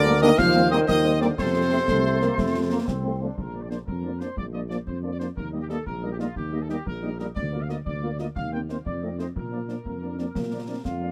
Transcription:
Already playing: D2 D3 A#4 D5 D6
0.05 G3 A#3 D4
0.21 D#3 G3 A#3 D4 D#5 D#6, snare
0.38 D#2 F3 C5 F5 F6, concert bass drum, snare
0.55 G3 A#3 C4
0.71 D#3 G3 A#3 C4 D#5 D#6
0.88 D#2 D#3 D#5 D#6, concert bass drum, snare
1.05 G3 A#3 C4, snare
1.20 D3 G3 A#3 C4 D5 D6, snare
1.37 F2 C3 A4 C5 C6, concert bass drum, snare
1.55 F3 A3 C4
1.71 F3 A3 C4
1.88 C2 A3, concert bass drum, snare
2.05 F3 A3 C4
2.20 F3 A3 A#3 C4, snare
2.37 F2 A3, concert bass drum, snare
2.55 F3 A3 C4
2.71 F3 A3 A#3 C4
2.88 C2 C4, concert bass drum, snare
3.04 F3 A3 C4
3.21 F3 A3 C4 D4
3.37 A#1 A#4, concert bass drum
3.54 F3 A#3 D4 F4 D5
3.62 D5
3.70 F3 A#3 D4 F4 C5 D5, snare
3.86 F2 A#4, concert bass drum
4.04 F3 A#3 D4 F4 D5
4.20 F3 A#3 D4 F4 C5 D5, snare
4.37 A#1 D5, concert bass drum
4.53 F3 A#3 D4 F4 D5 D#5
4.70 F3 A#3 D4 F4 D5, snare
4.86 F2 C5, concert bass drum
5.03 F3 A#3 D4 F4 D5
5.12 D5
5.19 F3 A#3 D4 F4 C5 D5, snare
5.36 D#2 A#4, concert bass drum
5.53 G3 A#3 D#4 G4 D#5
5.61 G4
5.69 G3 A#3 D#4 G4 A4 D#5, snare
5.86 A#1 A#4, concert bass drum
6.03 G3 A#3 D#4 G4 D#5
6.12 G4
6.19 G3 A#3 D#4 F4 G4 D#5, snare
6.36 D#2 G4, concert bass drum
6.52 G3 A#3 D#4 G4 D#5
6.61 A4
6.69 G3 A#3 D#4 G4 D#5, snare
6.86 A#1 A#4, concert bass drum
7.03 G3 A#3 D#4 G4 D#5
7.19 G3 A#3 D#4 G4 A#4 D#5, snare
7.35 D2 D5, concert bass drum
7.53 A#3 F4 A#4 D5
7.61 F5
7.69 A#3 F4 A#4 D5 D#5, snare
7.85 D2 D5, concert bass drum
8.03 A#3 F4 A#4 D5
8.18 A#3 F4 A#4 D5 D#5, snare
8.36 D#2 F5, concert bass drum
8.52 A#3 C4 D#4 A#4 C5 G5
8.69 A#3 C4 D#4 A#4 C5, snare
8.86 F2 D5, concert bass drum
9.03 A3 C4 D#4 A4 D#5
9.19 A3 C4 D#4 A4 C5 D#5, snare
9.36 A#2 A#4, concert bass drum
9.52 F3 A#3 D4 A#4 D5
9.68 F3 A#3 D4 A#4 D5, snare
9.85 F2 A#3, concert bass drum
10.02 F3 A#3 D4 A#4 D5
10.11 D4
10.18 F3 A#3 C4 D4 A#4 D5, snare
10.35 A#2 A#3, concert bass drum, snare
10.52 F3 A#3 D4 A#4 D5
10.68 F3 A#3 C4 D4 A#4 D5
10.84 F2 F4 F5, concert bass drum, snare
11.01 F3 A#3 D4 A#4 D5

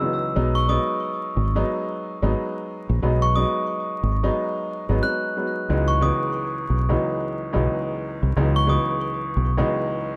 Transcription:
0.01 C#2 E3 F#3 G#3 B3 D#4
0.36 B1 F#3 G#3 B3 D#4
0.55 C#6
0.68 F#3 G#3 B3 D#4 D#6
1.37 G#1
1.55 F#3 G#3 B3 D#4
2.22 G#1 F#3 G#3 B3 D#4
2.89 A#1
3.02 B1 F#3 G#3 B3 D#4
3.22 C#6
3.36 F#3 G#3 B3 D#4 D#6
4.03 G#1
4.23 F#3 G#3 B3 D#4
4.89 G#1 F#3 G#3 B3 D#4
5.03 F#3 G#3 B3 D#4 F#6
5.37 F#3 G#3 B3 D#4
5.70 C#2 E3 F#3 G#3 B3 D#4
5.88 C#6
6.01 C#2 E3 F#3 G#3 B3 D#4 D#6
6.70 B1
6.89 C#2 E3 F#3 G#3 B3 D#4
7.53 B1 C#2 E3 F#3 G#3 B3 D#4
8.23 C2
8.36 C#2 E3 F#3 G#3 B3 D#4
8.56 C#6
8.67 C#2 E3 F#3 G#3 B3 D#4 D#6
9.37 B1
9.58 C#2 E3 F#3 G#3 B3 D#4

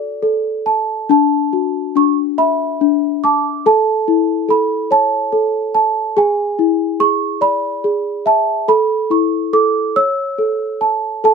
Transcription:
Already playing: F#4 A4 D5 D6
0.23 A4
0.66 A5
1.09 D4 A5
1.53 F#4
1.95 D4 C#6
2.38 E5 B5
2.81 D4
3.24 A5 D6
3.66 A4 A5
4.08 E4
4.49 A4 B5
4.91 C#5 A5
5.32 A4
5.75 A5
6.17 G#4 G#5
6.59 E4
7.00 G#4 C#6
7.41 D5 B5
7.84 G#4
8.26 E5 A5
8.68 A4 B5
9.10 E4 C#6
9.53 A4 D6
9.96 C#5 E6
10.38 A4
10.81 A5
11.24 A4 A5

